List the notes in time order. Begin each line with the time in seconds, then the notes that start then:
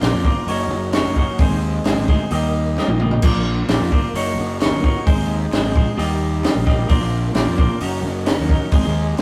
Already playing: C5 F5 A#5 D6
0.01 A#1 A#3 C4 D4 F4 A#4 C5 D5, snare, clap, open hi-hat
0.13 F2, snare
0.23 G1 A#3 C4 D4 F4 A#4 C5 D5, kick
0.46 F#1 F#3 A#3 C#4 D#4 A#4 C#5 F#5 D#6, open hi-hat
0.70 F#1
0.92 F#3 A#3 C#4 D#4 A#4 C#5, snare, clap, open hi-hat
1.05 F#1
1.16 F#3 A#3 C#4 D#4 A#4 C#5, kick
1.38 G#1 G#2 D#3 G#3 C4 D#4 G#4 C5 D#5 G#5, kick, open hi-hat
1.50 D#2
1.85 G#1 G#2 D#3 G#3 C4 D#4 G#4 C5, snare, clap, open hi-hat
1.97 G#1, snare
2.08 D2 G#2 D#3 G#3 C4 D#4 G#4 C5, kick, clap
2.30 D#2 D#3 G3 A#3 D#4 G4 A#4 D#5 G5, open hi-hat
2.77 D#3 G3 A#3 D#4 G4 A#4 D#5, snare, clap
2.88 A#1, high tom
3.00 D#3 G3 A#3 D#4 G4 A#4 D#5, mid tom
3.11 floor tom
3.22 A#1 A#3 C4 D4 F4 A#4 C5 D5 F5 C6 D6, kick, crash
3.33 A#1
3.68 A#1 A#3 C4 D4 F4 A#4 C5 D5, snare, clap, open hi-hat
3.80 F2, snare
3.91 G1 A#3 C4 D4 F4 A#4 C5 D5, kick
4.13 F#1 F#3 A#3 D#4 A#4 C#5 F#5 C#6 D#6, open hi-hat
4.37 F#1
4.61 F#3 A#3 D#4 A#4 C#5, snare, clap, open hi-hat
4.71 G1
4.83 F#3 A#3 D#4 A#4 C#5, kick
5.06 G#1 G#3 C4 D#4 G#4 C5 D#5 C6, kick, open hi-hat
5.17 D#2
5.52 G#1 G#3 C4 D#4 G#4 C5, snare, clap, open hi-hat
5.63 G#1
5.75 A#1 G#3 C4 D#4 G#4 C5, kick
5.96 D#2 D#3 G3 A#3 D#4 G4 A#4 D#5 A#5, open hi-hat
6.43 D#3 G3 A#3 D#4 G4 A#4 D#5, snare, clap, open hi-hat
6.55 A#1
6.65 D#3 G3 A#3 D#4 G4 A#4 D#5, kick, snare
6.87 A#1 A#3 C4 D4 F4 A#4 C5 D5 F5 C6 D6, kick, open hi-hat
7.00 A#1
7.34 A#1 A#3 C4 D4 F4 A#4 C5 D5, snare, clap, open hi-hat
7.47 F2, snare
7.58 A#1 A#3 C4 D4 F4 A#4 C5 D5, kick
7.80 F#1 F#3 C#4 D#4 A#4 F#5 C#6 D#6, open hi-hat
8.05 F#1
8.26 F#3 C#4 D#4 A#4, snare, clap, open hi-hat
8.39 D#2
8.49 F#3 C#4 D#4 A#4, kick
8.71 G#1 G#2 D#3 G#3 C4 D#4 G#4 D#5 C6, kick, open hi-hat
8.84 D#2
9.17 G#2 D#3 G#3 C4 D#4 G#4, clap, open hi-hat